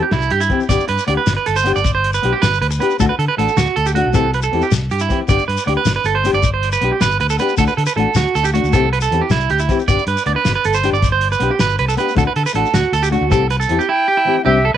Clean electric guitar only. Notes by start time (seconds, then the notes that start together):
0.03 G4
0.12 E4
0.31 G4
0.41 E4
0.69 D5
0.89 B4
1.08 D5
1.17 B4
1.37 B4
1.46 A4
1.56 C5
1.76 D5
1.95 C5
2.14 B4
2.33 G4
2.42 B4
2.62 B4
2.71 muted clean electric guitar stroke
2.80 B4
3.00 A4
3.09 B4
3.19 A4
3.28 B4
3.38 A4
3.57 F#4
3.76 A4
3.86 G4
3.95 F#4
4.15 A4
4.34 B4
4.43 A4
4.63 G4
4.91 G4
5.01 E4
5.29 D5
5.48 B4
5.67 D5
5.77 B4
5.96 B4
6.06 A4
6.15 C5
6.34 D5
6.54 C5
6.73 B4
6.92 G4
7.01 B4
7.21 B4
7.30 A4
7.40 B4
7.58 A4
7.68 B4
7.77 A4
7.87 B4
7.96 A4
8.16 F#4
8.35 A4
8.45 G4
8.54 F#4
8.73 A4
8.93 B4
9.02 A4
9.21 G4
9.31 E4
9.50 G4
9.60 E4
9.88 D5
10.08 B4
10.27 D5
10.36 B4
10.55 B4
10.65 A4
10.74 C5
10.93 D5
11.12 C5
11.32 B4
11.51 G4
11.60 B4
11.79 B4
11.88 A4
11.98 B4
12.18 A4
12.27 B4
12.36 A4
12.46 B4
12.55 A4
12.74 F#4
12.93 A4
13.03 G4
13.12 F#4
13.32 A4
13.51 B4
13.60 A4
13.79 G4
13.89 E4
14.08 G4
14.17 E4
14.46 G4
14.65 A4